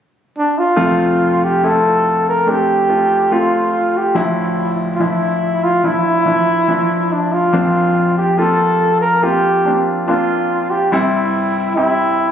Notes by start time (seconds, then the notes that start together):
0.38 D4
0.59 F4
0.76 F2 C3 A3 C4 F4
1.44 G4
1.63 A3 C4 E4 A4
2.29 A#4
2.46 A3 C4 D4 G4
2.89 A3 C4 F4
3.31 A3 C4 F4
3.98 G4
4.15 D2 A2 F3 D4 E4
4.95 F4
5.00 F3 D4 E4
5.64 F4
5.84 F3 D4 E4
6.26 F3 D4 E4
6.68 F3 D4 E4
7.12 D4
7.32 F4
7.53 A#1 F2 A#3 C4 D4
8.18 G4
8.37 A#3 C4 F4 A4
9.01 A#4
9.22 A#3 C4 F4 G4
9.65 A#3 C4 D4
10.07 A#3 C4 D4 F4
10.71 G4
10.92 C2 G2 G3 C4 E4
11.76 G3 C4 E4 G4